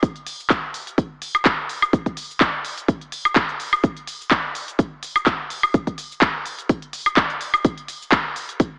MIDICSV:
0, 0, Header, 1, 2, 480
1, 0, Start_track
1, 0, Tempo, 476190
1, 27, Time_signature, 4, 2, 24, 8
1, 8858, End_track
2, 0, Start_track
2, 0, Title_t, "Drums"
2, 27, Note_on_c, 9, 36, 119
2, 28, Note_on_c, 9, 42, 77
2, 35, Note_on_c, 9, 82, 33
2, 128, Note_off_c, 9, 36, 0
2, 128, Note_off_c, 9, 42, 0
2, 136, Note_off_c, 9, 82, 0
2, 158, Note_on_c, 9, 42, 35
2, 259, Note_off_c, 9, 42, 0
2, 267, Note_on_c, 9, 46, 108
2, 275, Note_on_c, 9, 82, 74
2, 368, Note_off_c, 9, 46, 0
2, 376, Note_off_c, 9, 82, 0
2, 406, Note_on_c, 9, 82, 42
2, 503, Note_on_c, 9, 39, 121
2, 507, Note_off_c, 9, 82, 0
2, 508, Note_on_c, 9, 36, 127
2, 508, Note_on_c, 9, 42, 79
2, 515, Note_on_c, 9, 82, 33
2, 604, Note_off_c, 9, 39, 0
2, 608, Note_off_c, 9, 36, 0
2, 608, Note_off_c, 9, 42, 0
2, 616, Note_off_c, 9, 82, 0
2, 748, Note_on_c, 9, 46, 98
2, 755, Note_on_c, 9, 82, 73
2, 848, Note_off_c, 9, 46, 0
2, 856, Note_off_c, 9, 82, 0
2, 878, Note_on_c, 9, 42, 53
2, 886, Note_on_c, 9, 82, 44
2, 979, Note_off_c, 9, 42, 0
2, 987, Note_off_c, 9, 82, 0
2, 988, Note_on_c, 9, 36, 127
2, 988, Note_on_c, 9, 42, 77
2, 996, Note_on_c, 9, 82, 31
2, 1088, Note_off_c, 9, 36, 0
2, 1089, Note_off_c, 9, 42, 0
2, 1096, Note_off_c, 9, 82, 0
2, 1228, Note_on_c, 9, 46, 110
2, 1235, Note_on_c, 9, 82, 77
2, 1329, Note_off_c, 9, 46, 0
2, 1336, Note_off_c, 9, 82, 0
2, 1359, Note_on_c, 9, 42, 51
2, 1359, Note_on_c, 9, 76, 68
2, 1366, Note_on_c, 9, 82, 41
2, 1460, Note_off_c, 9, 42, 0
2, 1460, Note_off_c, 9, 76, 0
2, 1463, Note_on_c, 9, 39, 125
2, 1467, Note_off_c, 9, 82, 0
2, 1468, Note_on_c, 9, 36, 124
2, 1468, Note_on_c, 9, 42, 79
2, 1475, Note_on_c, 9, 82, 31
2, 1564, Note_off_c, 9, 39, 0
2, 1568, Note_off_c, 9, 36, 0
2, 1569, Note_off_c, 9, 42, 0
2, 1576, Note_off_c, 9, 82, 0
2, 1708, Note_on_c, 9, 46, 96
2, 1715, Note_on_c, 9, 82, 75
2, 1809, Note_off_c, 9, 46, 0
2, 1816, Note_off_c, 9, 82, 0
2, 1839, Note_on_c, 9, 76, 86
2, 1846, Note_on_c, 9, 82, 43
2, 1939, Note_off_c, 9, 76, 0
2, 1947, Note_off_c, 9, 82, 0
2, 1948, Note_on_c, 9, 36, 121
2, 1948, Note_on_c, 9, 42, 78
2, 1955, Note_on_c, 9, 82, 34
2, 2048, Note_off_c, 9, 36, 0
2, 2048, Note_off_c, 9, 42, 0
2, 2056, Note_off_c, 9, 82, 0
2, 2078, Note_on_c, 9, 36, 62
2, 2078, Note_on_c, 9, 42, 34
2, 2179, Note_off_c, 9, 36, 0
2, 2179, Note_off_c, 9, 42, 0
2, 2187, Note_on_c, 9, 46, 105
2, 2195, Note_on_c, 9, 82, 76
2, 2288, Note_off_c, 9, 46, 0
2, 2296, Note_off_c, 9, 82, 0
2, 2326, Note_on_c, 9, 82, 43
2, 2423, Note_on_c, 9, 39, 116
2, 2427, Note_off_c, 9, 82, 0
2, 2428, Note_on_c, 9, 36, 127
2, 2428, Note_on_c, 9, 42, 76
2, 2436, Note_on_c, 9, 82, 33
2, 2524, Note_off_c, 9, 39, 0
2, 2528, Note_off_c, 9, 36, 0
2, 2529, Note_off_c, 9, 42, 0
2, 2536, Note_off_c, 9, 82, 0
2, 2668, Note_on_c, 9, 46, 95
2, 2675, Note_on_c, 9, 82, 78
2, 2768, Note_off_c, 9, 46, 0
2, 2776, Note_off_c, 9, 82, 0
2, 2798, Note_on_c, 9, 42, 51
2, 2806, Note_on_c, 9, 82, 45
2, 2899, Note_off_c, 9, 42, 0
2, 2907, Note_off_c, 9, 82, 0
2, 2907, Note_on_c, 9, 36, 125
2, 2908, Note_on_c, 9, 42, 76
2, 2915, Note_on_c, 9, 82, 33
2, 3008, Note_off_c, 9, 36, 0
2, 3008, Note_off_c, 9, 42, 0
2, 3016, Note_off_c, 9, 82, 0
2, 3038, Note_on_c, 9, 42, 37
2, 3139, Note_off_c, 9, 42, 0
2, 3147, Note_on_c, 9, 46, 111
2, 3155, Note_on_c, 9, 82, 74
2, 3248, Note_off_c, 9, 46, 0
2, 3256, Note_off_c, 9, 82, 0
2, 3278, Note_on_c, 9, 42, 48
2, 3278, Note_on_c, 9, 76, 69
2, 3286, Note_on_c, 9, 82, 44
2, 3379, Note_off_c, 9, 42, 0
2, 3379, Note_off_c, 9, 76, 0
2, 3383, Note_on_c, 9, 39, 116
2, 3387, Note_off_c, 9, 82, 0
2, 3387, Note_on_c, 9, 36, 126
2, 3387, Note_on_c, 9, 42, 76
2, 3395, Note_on_c, 9, 82, 33
2, 3483, Note_off_c, 9, 39, 0
2, 3488, Note_off_c, 9, 36, 0
2, 3488, Note_off_c, 9, 42, 0
2, 3496, Note_off_c, 9, 82, 0
2, 3518, Note_on_c, 9, 42, 34
2, 3619, Note_off_c, 9, 42, 0
2, 3627, Note_on_c, 9, 46, 96
2, 3635, Note_on_c, 9, 82, 78
2, 3728, Note_off_c, 9, 46, 0
2, 3736, Note_off_c, 9, 82, 0
2, 3758, Note_on_c, 9, 76, 87
2, 3765, Note_on_c, 9, 82, 46
2, 3859, Note_off_c, 9, 76, 0
2, 3866, Note_off_c, 9, 82, 0
2, 3867, Note_on_c, 9, 36, 118
2, 3867, Note_on_c, 9, 42, 75
2, 3875, Note_on_c, 9, 82, 35
2, 3968, Note_off_c, 9, 36, 0
2, 3968, Note_off_c, 9, 42, 0
2, 3975, Note_off_c, 9, 82, 0
2, 3998, Note_on_c, 9, 42, 35
2, 4098, Note_off_c, 9, 42, 0
2, 4107, Note_on_c, 9, 46, 106
2, 4115, Note_on_c, 9, 82, 76
2, 4208, Note_off_c, 9, 46, 0
2, 4216, Note_off_c, 9, 82, 0
2, 4245, Note_on_c, 9, 82, 45
2, 4343, Note_on_c, 9, 39, 115
2, 4346, Note_off_c, 9, 82, 0
2, 4347, Note_on_c, 9, 36, 122
2, 4347, Note_on_c, 9, 42, 78
2, 4355, Note_on_c, 9, 82, 34
2, 4443, Note_off_c, 9, 39, 0
2, 4448, Note_off_c, 9, 36, 0
2, 4448, Note_off_c, 9, 42, 0
2, 4456, Note_off_c, 9, 82, 0
2, 4587, Note_on_c, 9, 46, 94
2, 4595, Note_on_c, 9, 82, 76
2, 4688, Note_off_c, 9, 46, 0
2, 4696, Note_off_c, 9, 82, 0
2, 4718, Note_on_c, 9, 42, 53
2, 4726, Note_on_c, 9, 82, 46
2, 4819, Note_off_c, 9, 42, 0
2, 4827, Note_off_c, 9, 82, 0
2, 4827, Note_on_c, 9, 36, 120
2, 4828, Note_on_c, 9, 42, 77
2, 4835, Note_on_c, 9, 82, 34
2, 4928, Note_off_c, 9, 36, 0
2, 4928, Note_off_c, 9, 42, 0
2, 4936, Note_off_c, 9, 82, 0
2, 5067, Note_on_c, 9, 46, 107
2, 5075, Note_on_c, 9, 82, 80
2, 5168, Note_off_c, 9, 46, 0
2, 5176, Note_off_c, 9, 82, 0
2, 5198, Note_on_c, 9, 42, 48
2, 5198, Note_on_c, 9, 76, 69
2, 5206, Note_on_c, 9, 82, 45
2, 5299, Note_off_c, 9, 42, 0
2, 5299, Note_off_c, 9, 76, 0
2, 5303, Note_on_c, 9, 39, 116
2, 5307, Note_off_c, 9, 82, 0
2, 5307, Note_on_c, 9, 36, 119
2, 5308, Note_on_c, 9, 42, 75
2, 5315, Note_on_c, 9, 82, 34
2, 5404, Note_off_c, 9, 39, 0
2, 5408, Note_off_c, 9, 36, 0
2, 5408, Note_off_c, 9, 42, 0
2, 5416, Note_off_c, 9, 82, 0
2, 5547, Note_on_c, 9, 46, 92
2, 5555, Note_on_c, 9, 82, 80
2, 5648, Note_off_c, 9, 46, 0
2, 5656, Note_off_c, 9, 82, 0
2, 5678, Note_on_c, 9, 76, 86
2, 5686, Note_on_c, 9, 82, 46
2, 5779, Note_off_c, 9, 76, 0
2, 5787, Note_off_c, 9, 82, 0
2, 5787, Note_on_c, 9, 42, 80
2, 5788, Note_on_c, 9, 36, 112
2, 5795, Note_on_c, 9, 82, 35
2, 5888, Note_off_c, 9, 36, 0
2, 5888, Note_off_c, 9, 42, 0
2, 5896, Note_off_c, 9, 82, 0
2, 5918, Note_on_c, 9, 36, 58
2, 5918, Note_on_c, 9, 42, 35
2, 6019, Note_off_c, 9, 36, 0
2, 6019, Note_off_c, 9, 42, 0
2, 6027, Note_on_c, 9, 46, 100
2, 6035, Note_on_c, 9, 82, 79
2, 6128, Note_off_c, 9, 46, 0
2, 6136, Note_off_c, 9, 82, 0
2, 6166, Note_on_c, 9, 82, 47
2, 6263, Note_on_c, 9, 39, 114
2, 6267, Note_off_c, 9, 82, 0
2, 6267, Note_on_c, 9, 42, 79
2, 6268, Note_on_c, 9, 36, 119
2, 6275, Note_on_c, 9, 82, 35
2, 6364, Note_off_c, 9, 39, 0
2, 6368, Note_off_c, 9, 36, 0
2, 6368, Note_off_c, 9, 42, 0
2, 6376, Note_off_c, 9, 82, 0
2, 6507, Note_on_c, 9, 46, 88
2, 6515, Note_on_c, 9, 82, 83
2, 6608, Note_off_c, 9, 46, 0
2, 6616, Note_off_c, 9, 82, 0
2, 6638, Note_on_c, 9, 42, 54
2, 6646, Note_on_c, 9, 82, 48
2, 6739, Note_off_c, 9, 42, 0
2, 6747, Note_off_c, 9, 82, 0
2, 6747, Note_on_c, 9, 42, 77
2, 6748, Note_on_c, 9, 36, 117
2, 6755, Note_on_c, 9, 82, 35
2, 6848, Note_off_c, 9, 42, 0
2, 6849, Note_off_c, 9, 36, 0
2, 6856, Note_off_c, 9, 82, 0
2, 6878, Note_on_c, 9, 42, 38
2, 6979, Note_off_c, 9, 42, 0
2, 6987, Note_on_c, 9, 46, 101
2, 6995, Note_on_c, 9, 82, 82
2, 7088, Note_off_c, 9, 46, 0
2, 7096, Note_off_c, 9, 82, 0
2, 7118, Note_on_c, 9, 42, 51
2, 7118, Note_on_c, 9, 76, 68
2, 7125, Note_on_c, 9, 82, 46
2, 7219, Note_off_c, 9, 42, 0
2, 7219, Note_off_c, 9, 76, 0
2, 7223, Note_on_c, 9, 39, 115
2, 7226, Note_off_c, 9, 82, 0
2, 7227, Note_on_c, 9, 42, 79
2, 7228, Note_on_c, 9, 36, 116
2, 7235, Note_on_c, 9, 82, 35
2, 7324, Note_off_c, 9, 39, 0
2, 7328, Note_off_c, 9, 36, 0
2, 7328, Note_off_c, 9, 42, 0
2, 7336, Note_off_c, 9, 82, 0
2, 7358, Note_on_c, 9, 42, 37
2, 7459, Note_off_c, 9, 42, 0
2, 7467, Note_on_c, 9, 46, 92
2, 7475, Note_on_c, 9, 82, 81
2, 7568, Note_off_c, 9, 46, 0
2, 7575, Note_off_c, 9, 82, 0
2, 7598, Note_on_c, 9, 76, 86
2, 7605, Note_on_c, 9, 82, 48
2, 7699, Note_off_c, 9, 76, 0
2, 7706, Note_off_c, 9, 82, 0
2, 7707, Note_on_c, 9, 42, 84
2, 7708, Note_on_c, 9, 36, 111
2, 7715, Note_on_c, 9, 82, 35
2, 7808, Note_off_c, 9, 36, 0
2, 7808, Note_off_c, 9, 42, 0
2, 7815, Note_off_c, 9, 82, 0
2, 7838, Note_on_c, 9, 42, 38
2, 7939, Note_off_c, 9, 42, 0
2, 7947, Note_on_c, 9, 46, 99
2, 7955, Note_on_c, 9, 82, 80
2, 8048, Note_off_c, 9, 46, 0
2, 8056, Note_off_c, 9, 82, 0
2, 8086, Note_on_c, 9, 82, 47
2, 8183, Note_on_c, 9, 39, 115
2, 8187, Note_off_c, 9, 82, 0
2, 8187, Note_on_c, 9, 36, 117
2, 8187, Note_on_c, 9, 42, 82
2, 8195, Note_on_c, 9, 82, 36
2, 8283, Note_off_c, 9, 39, 0
2, 8288, Note_off_c, 9, 36, 0
2, 8288, Note_off_c, 9, 42, 0
2, 8296, Note_off_c, 9, 82, 0
2, 8427, Note_on_c, 9, 46, 85
2, 8435, Note_on_c, 9, 82, 80
2, 8528, Note_off_c, 9, 46, 0
2, 8535, Note_off_c, 9, 82, 0
2, 8558, Note_on_c, 9, 42, 56
2, 8565, Note_on_c, 9, 82, 48
2, 8659, Note_off_c, 9, 42, 0
2, 8666, Note_off_c, 9, 82, 0
2, 8667, Note_on_c, 9, 42, 83
2, 8668, Note_on_c, 9, 36, 115
2, 8675, Note_on_c, 9, 82, 35
2, 8768, Note_off_c, 9, 36, 0
2, 8768, Note_off_c, 9, 42, 0
2, 8775, Note_off_c, 9, 82, 0
2, 8858, End_track
0, 0, End_of_file